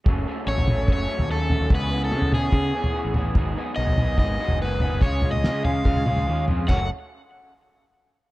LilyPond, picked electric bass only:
\new Staff \with { instrumentName = "Picked electric bass" } { \clef bass \time 4/4 \key fis \dorian \tempo 4 = 144 fis,,8 r8 a,,4 fis,,8 r16 dis,4 dis,16 | cis,4 cis4 cis8 r8. a,,8. | gis,,8 r8 b,,4 gis,,8 r16 fis,,4 fis,,16 | cis,4 cis4 cis8 cis,8 dis,8 eis,8 |
fis,,8 r2. r8 | }